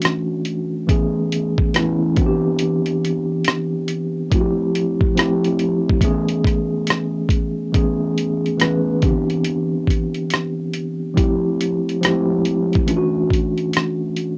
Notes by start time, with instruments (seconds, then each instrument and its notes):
Already playing: tine electric piano E3 A3 C#4 D4 F#4
0.02 cross-stick, closed hi-hat
0.45 closed hi-hat
0.87 tine electric piano E3 A3 B3 C#4 G#4, kick, closed hi-hat
1.32 closed hi-hat
1.58 kick
1.74 tine electric piano E3 A3 B3 C#4 E4, cross-stick, closed hi-hat
2.16 tine electric piano E3 B3 C4 D4 F#4, kick, closed hi-hat
2.26 tine electric piano G4
2.59 closed hi-hat
2.86 closed hi-hat
3.05 closed hi-hat
3.44 cross-stick, closed hi-hat
3.88 closed hi-hat
4.31 tine electric piano F3 A3 C4 E4 F#4, kick, closed hi-hat
4.41 tine electric piano G4
4.75 closed hi-hat
5.01 kick
5.15 tine electric piano F3 A3 C4 E4 G4, closed hi-hat
5.19 cross-stick
5.44 closed hi-hat
5.59 closed hi-hat
5.89 kick
6.01 tine electric piano E3 A3 B3 C#4, kick, closed hi-hat
6.05 tine electric piano G#4
6.28 closed hi-hat
6.44 kick, cross-stick, closed hi-hat
6.87 cross-stick, closed hi-hat
7.29 kick, closed hi-hat
7.72 tine electric piano E3 A3 B3 C#4 G#4, kick, closed hi-hat
8.18 closed hi-hat
8.46 closed hi-hat
8.58 tine electric piano E3 A3 B3 C#4 B4, cross-stick, closed hi-hat
9.01 tine electric piano D3 B3 C4 D4 G4, kick, closed hi-hat
9.08 tine electric piano E3
9.30 closed hi-hat
9.45 closed hi-hat
9.87 kick, closed hi-hat
10.14 closed hi-hat
10.30 cross-stick, closed hi-hat
10.73 closed hi-hat
11.14 tine electric piano F3 G3 C4 E4 G4, kick, closed hi-hat
11.22 tine electric piano A3
11.61 closed hi-hat
11.89 closed hi-hat
12.01 tine electric piano F3 G#3 C4 E4 G4, closed hi-hat
12.05 tine electric piano A3, cross-stick
12.45 closed hi-hat
12.73 kick, closed hi-hat
12.86 tine electric piano E3 A3 C#4 D4 F4, closed hi-hat
12.97 tine electric piano F#4
13.30 kick, closed hi-hat
13.57 closed hi-hat
13.73 cross-stick, closed hi-hat
14.16 closed hi-hat